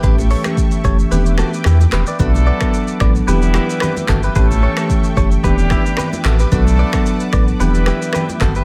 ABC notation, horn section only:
X:1
M:4/4
L:1/8
Q:"Swing 16ths" 1/4=111
K:Edor
V:1 name="Horn section"
z8 | [F,A,DA]3 z [G,B,EB]3 z | [E,A,CA]3 z [E,G,DG]3 z | [F,A,DA]3 z [G,B,EB]3 z |]